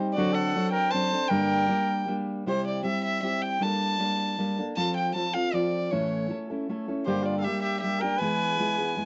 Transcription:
Already playing: G3 C4 D#4 G4
0.13 F#4 D5
0.18 D3 F#3 C4 D4 A4
0.33 A4 F#5
0.55 F#3 C4 D4 A4
0.72 A#4 G5
0.90 F#3 C4 D4 C5 A5
0.95 A4
1.12 C4 D4 A4
1.28 G2 D3 G3 A#3 D4 G4 A#4 G5
1.68 G3 A#3 D4 G4
2.07 G3 A#3 D4 G4
2.46 C3 G3 C4 E4 G4 C5
2.67 D5
2.83 G3 C4 E4 G4 E5
3.05 E5
3.22 G3 C4 E4 G4 E5
3.42 G5
3.60 G3 A#3 D4 A4 A5
3.99 G3 A#3 D4 A4
4.38 G3 A#3 D4 A4
4.58 A#3 D4 A4
4.76 F3 C4 F4 A4 A5
4.97 G5
5.15 F3 C4 F4 A4 A5
5.34 C4 F4 A4 F5
5.53 F3 C4 F4 A4 D5
5.91 A2 E3 A3 C#4 E4 A4 C#5
6.29 A3 C#4 E4 A4
6.50 A3 C#4 E4 A4
6.69 A3 C#4 E4 A4
6.88 A3 C#4 E4 A4
7.06 G2 D3 G3 A#3 D4 G4 C5
7.23 F4 D5
7.38 A4 F5
7.43 G3 A#3 G4 E5
7.47 D4 G4
7.61 G4 E5
7.79 G4 E5
7.84 G3 A#3 D4 G4
8.00 D4 G4 A#4 G5
8.04 G3 A#3
8.17 B4 G#5
8.21 E3 G#3 B3 E4 G#4
8.59 G#3 B3 E4 G#4
8.79 B3 E4 G#4
8.97 G#3 B3 E4 G#4

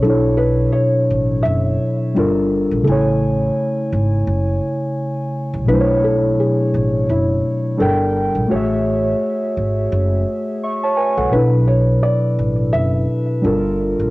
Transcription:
0.01 B1 B2 F#3 D4 A4
0.06 E4 A4 C#5
0.37 B4
0.72 C#5
1.10 A1
1.43 F#1 E5
2.14 G1 G3 D4 F4 A4
2.19 A#4
2.71 A#1
2.83 C#3 A3 A4
2.87 A1 E4 G#5
2.91 C#5
3.93 G#1
4.27 F#1
5.54 C2
5.65 B1 B2 F#3 D4 B4
5.70 A3 E4 C5
5.80 C#5
6.04 A4
6.40 G#4
6.74 A1
7.09 F#1 E4
7.77 G1 G3 D4 A4 A#4
7.82 G5
8.35 A#1
8.48 A1 A3 F#4 C#5
8.52 G#4 C#5 E5
9.57 G#1
9.92 F#1
10.63 E5 C#6
10.83 C#5 A5
10.97 B4 G#5
11.17 C2 A4 F#5
11.30 B1 B2 F#3 D4 B4
11.35 E4 A4 B4
11.67 C#5
12.03 D5
12.39 A1
12.73 F#1 E5
13.42 G1 G3 D4 F4 A4
13.46 A#4
13.99 A#1

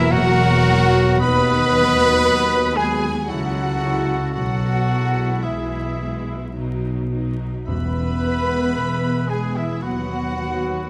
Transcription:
Already playing: E3 F#3 A#3 E4 A#4 E5
0.11 E1 E2 F#3 F#4 A#4 F#5
0.64 F#3 A#3
1.20 D#2 B3 B4 D#5 B5
1.71 F#3 B3
2.24 D#2
2.76 F#3 G#3 B3 G#4 B4 G#5
3.28 C#2 C#3 F#3 G#3 E4 F#4 A4 F#5
3.80 G#3 E4
4.33 B1 B2 F#3 F#4 A4 F#5
4.89 G#3 E4
5.43 B1 B2 E3 E4 G#4 E5
5.99 G#3 E4
6.54 B1 B2 F#3 D#4
7.12 F#3 D#4
7.66 E1 E2 B3 B4 E5 B5
8.23 G#3 B3
8.76 E1 E2
9.28 G#3 B3 G#4 B4 G#5
9.55 E3 E4 G#4 E5
9.81 D#2 F#3 B3 F#4 B4 F#5
10.38 F#3 B3

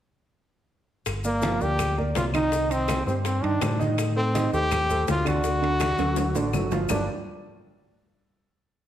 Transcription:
1.06 G1, high bongo, high conga, high timbale, claves, maracas
1.24 A#3 A#4 D5, high conga, maracas
1.42 F3 F4 F5, high bongo, high conga, high timbale, low timbale, maracas
1.60 D2 A#3 G4 A#4 D5, high conga, maracas
1.79 high bongo, high conga, low conga, high timbale, claves, maracas
1.98 A#3 A#4 D5, high conga, low conga
2.15 C2 F4, high bongo, low bongo, high conga, high timbale, low timbale, maracas
2.34 D#3 D#4 D#5, high conga, high timbale, claves, maracas
2.52 D#3 D#4 D#5, high bongo, high conga, maracas
2.70 D#3 C4 D#4 D#5, high conga, high timbale, maracas
2.88 high bongo, high conga, high timbale, low timbale, claves, maracas
3.06 G2 G3 C4 G4 C5, high bongo, high conga, maracas
3.25 C4, high bongo, high conga, high timbale, maracas
3.42 G2 D#3 D4 D#4 D#5, high bongo, high conga, high timbale
3.61 A2 G3 G4 C5, high bongo, low bongo, high conga, high timbale, low timbale, claves, maracas
3.79 D#3 D#4 D#5, high bongo, high conga, maracas
3.98 high bongo, high conga, high timbale, claves, maracas
4.16 A3 C4 A4 C5, high conga
4.34 D#3 D#4 D#5, high bongo, high conga, high timbale, low timbale, maracas
4.53 D#2 A3 G4 A4 C5, high conga, maracas
4.71 high bongo, high conga, low conga, high timbale, claves, maracas
4.89 A3 A4 C5, high conga, low conga, maracas
5.08 D2 F4, high bongo, low bongo, high conga, high timbale, low timbale, maracas
5.25 D3 D4 F#4 D5, high conga, high timbale, claves, maracas
5.44 D3 D4 D5, high bongo, high conga, maracas
5.62 D3 D4 D5, high conga, high timbale
5.80 high bongo, high conga, high timbale, low timbale, claves, maracas
5.98 D2 F#3 F#4 A4, high conga, high timbale, maracas
6.16 low bongo, high conga, high timbale, maracas
6.35 A1 D3 D4 D5, low bongo, high conga, low timbale, maracas
6.53 G1 F#3 F#4 A4, low bongo, high conga, low timbale, claves, maracas
6.71 F3 F4 F5, low bongo, high conga, low timbale, maracas
6.89 G1 G3 D4 F4 G4 A#4 D5, low bongo, low conga, low timbale, claves, maracas

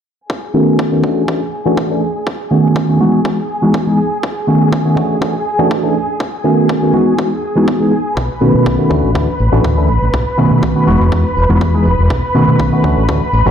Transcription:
0.30 G#4 G#5, kick
0.54 D#3 A3 B3 C#4 F#4
0.79 kick
0.92 D#3 A3 B3 C#4 F#4
1.03 E3 A3 C#4 D4 F#4, kick
1.28 E3 A3 C#4 D4 F#4, kick
1.65 E3 A3 C#4 D4 F#4
1.77 kick
1.90 E3 A3 C#4 D4 A4
2.27 kick
2.51 D#3 A3 B3 C#4 F#4
2.76 kick
2.88 D#3 A3 B3 C#4 F#4
3.00 E3 G#3 B3 D#4 F#4
3.24 E3 G#3 B3 D#4 F#4, kick
3.62 E3 G#3 B3 D#4 F#4
3.74 kick
3.86 E3 G#3 B3 D#4 G#4
4.23 kick
4.47 D#3 A3 B3 C#4 F#4
4.73 kick
4.85 D#3 A3 B3 C#4 F#4
4.96 E3 A3 C#4 D4 F#4, kick
5.21 E3 A3 C#4 D4 F#4, kick
5.58 E3 A3 C#4 D4 F#4
5.71 kick
5.83 E3 A3 C#4 D4 A4
6.20 kick
6.44 D#3 A3 B3 C#4 F#4
6.69 kick
6.82 D#3 A3 B3 C#4 F#4
6.93 E3 G#3 B3 D#4 F#4
7.18 E3 G#3 B3 D#4 F#4, kick
7.56 E3 G#3 B3 D#4 F#4
7.68 kick
7.80 E3 G#3 B3 D#4 G#4
8.17 B1 B4 B5, kick
8.31 tambourine
8.41 B2 D#3 A3 B3 C#4 F#4, tambourine
8.54 B2, tambourine
8.66 B1, kick, tambourine
8.78 D#3 A3 B3 C#4 F#4, tambourine
8.90 D2 E3 A3 C#4 D4 F#4, kick, tambourine
9.04 A1, tambourine
9.14 D2 E3 A3 C#4 D4 F#4, kick
9.28 muted fingered electric bass stroke, tambourine
9.39 A1, tambourine
9.52 A1 E3 A3 C#4 D4 F#4, tambourine
9.64 D2, kick, tambourine
9.77 E3 A3 C#4 D4 A4, tambourine
9.88 A1, tambourine
10.02 A1, tambourine
10.13 B1, kick, tambourine
10.27 muted fingered electric bass stroke, tambourine
10.37 B2 D#3 A3 B3 C#4 F#4, tambourine
10.51 B2, tambourine
10.63 B1, kick, tambourine
10.75 D#3 A3 B3 C#4 F#4, tambourine
10.87 E1 E3 G#3 B3 D#4 F#4, tambourine
11.00 E1, tambourine
11.12 E2 E3 G#3 B3 D#4 F#4, kick, tambourine
11.25 muted fingered electric bass stroke, tambourine
11.36 E1, tambourine
11.49 E1 E3 G#3 B3 D#4 F#4, tambourine
11.61 E2, kick, tambourine
11.74 E3 G#3 B3 D#4 G#4, tambourine
11.85 E1, tambourine
11.98 E1, tambourine
12.10 B1, kick, tambourine
12.23 tambourine
12.35 B2 D#3 A3 B3 C#4 F#4, tambourine
12.47 B2, tambourine
12.59 B1, kick, tambourine
12.72 D#3 A3 B3 C#4 F#4, tambourine
12.83 D2 E3 A3 C#4 D4 F#4, kick, tambourine
12.97 A1, tambourine
13.08 D2 E3 A3 C#4 D4 F#4, kick, tambourine
13.21 muted fingered electric bass stroke, tambourine
13.33 A1, tambourine
13.46 A1 E3 A3 C#4 D4 F#4, tambourine

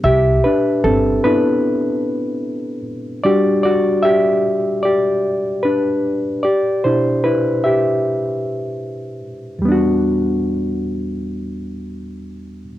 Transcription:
0.03 C2 G4 E5
0.44 D4 B4
0.84 G1 C4 A4
1.24 B3 D4 E4 B4
3.23 G3 D4 F#4 G4 D5
3.63 F#4 D5
4.03 G4 E5
4.83 G4 D5
5.63 D4 B4
6.43 G4 D5
6.84 B2 D4 E4 C5
7.24 E4 B4
7.64 G4 E5
9.59 E2 G3
9.65 B3 D4
9.72 F#4

